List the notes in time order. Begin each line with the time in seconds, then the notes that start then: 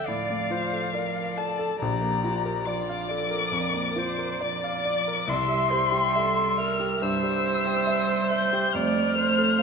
Already playing: D2 A3 F4 A4 D5 F5
0.06 A2 F3 D5 F5
0.30 A3
0.50 F4 C5
0.73 A4
0.94 A#4 D5
1.16 F5
1.37 A4 D5 A5
1.59 A4
1.79 A#1 F3 G4 D5 A#5
2.01 A#3
2.24 F4
2.45 A#4
2.66 F3 F4 D5 D6
2.89 F5
3.09 A4 D5
3.31 A#4
3.52 F2
3.56 A#4
3.74 A#3
3.96 F4 C5
4.18 A#4
4.40 F3 D5 D6
4.64 F5
4.85 D5
5.08 A#4
5.28 C2 G3 E5 C6
5.48 G3
5.71 G4 C5
5.92 G4
6.16 A4 E5
6.37 C6
6.58 A#4 E5 F6
6.80 G4
7.02 G2 G3 C5 E5 E6
7.23 G3
7.44 C5
7.65 G4
7.87 E5
8.08 C6
8.30 E5 G6
8.53 G4
8.73 F2 A3 C5 D5 F6
8.95 A3
9.16 C5
9.38 A4
9.59 F5